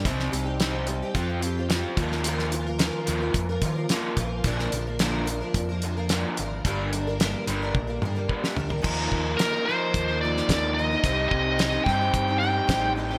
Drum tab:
CC |----------------|----------------|----------------|----------------|
HH |x-x-x-x-x-x-x-x-|x-x-x-x-x-x-x-x-|x-x-x-x-x-x-x-x-|x-x-x-x---------|
SD |-o--o-------o--o|-o--o-------o---|-o--o-------o---|----o--------o--|
T1 |----------------|----------------|----------------|--------o-------|
T2 |----------------|----------------|----------------|----------o-----|
FT |----------------|----------------|----------------|--------------oo|
BD |o-------o-----o-|--------o-o---o-|o-------o-------|o-------o---o---|

CC |x---------------|----------------|
HH |----x---x---x---|x---x---x---x---|
SD |----o------oo---|----o-o-----o---|
T1 |----------------|----------------|
T2 |----------------|----------------|
FT |----------------|----------------|
BD |o-o-----o---o---|o-o---o-o---o---|